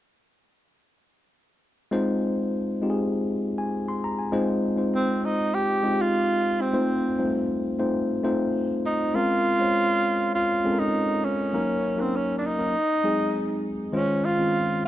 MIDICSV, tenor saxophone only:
0, 0, Header, 1, 2, 480
1, 0, Start_track
1, 0, Key_signature, -4, "minor"
1, 0, Tempo, 600000
1, 1550, Time_signature, 4, 2, 24, 8
1, 11902, End_track
2, 0, Start_track
2, 0, Title_t, "Tenor saxophone"
2, 0, Program_c, 0, 66
2, 3962, Note_on_c, 0, 60, 73
2, 4202, Note_on_c, 0, 63, 80
2, 4214, Note_off_c, 0, 60, 0
2, 4438, Note_on_c, 0, 67, 88
2, 4450, Note_off_c, 0, 63, 0
2, 4808, Note_on_c, 0, 65, 90
2, 4820, Note_off_c, 0, 67, 0
2, 5292, Note_on_c, 0, 60, 67
2, 5304, Note_off_c, 0, 65, 0
2, 6004, Note_off_c, 0, 60, 0
2, 7087, Note_on_c, 0, 63, 80
2, 7322, Note_on_c, 0, 65, 107
2, 7334, Note_off_c, 0, 63, 0
2, 8275, Note_off_c, 0, 65, 0
2, 8279, Note_on_c, 0, 65, 90
2, 8634, Note_on_c, 0, 63, 92
2, 8646, Note_off_c, 0, 65, 0
2, 9000, Note_on_c, 0, 61, 79
2, 9012, Note_off_c, 0, 63, 0
2, 9608, Note_on_c, 0, 60, 67
2, 9620, Note_off_c, 0, 61, 0
2, 9730, Note_on_c, 0, 61, 74
2, 9742, Note_off_c, 0, 60, 0
2, 9902, Note_off_c, 0, 61, 0
2, 9907, Note_on_c, 0, 62, 55
2, 9968, Note_on_c, 0, 63, 82
2, 9980, Note_off_c, 0, 62, 0
2, 10920, Note_off_c, 0, 63, 0
2, 11157, Note_on_c, 0, 61, 79
2, 11402, Note_on_c, 0, 65, 87
2, 11414, Note_off_c, 0, 61, 0
2, 11877, Note_off_c, 0, 65, 0
2, 11902, End_track
0, 0, End_of_file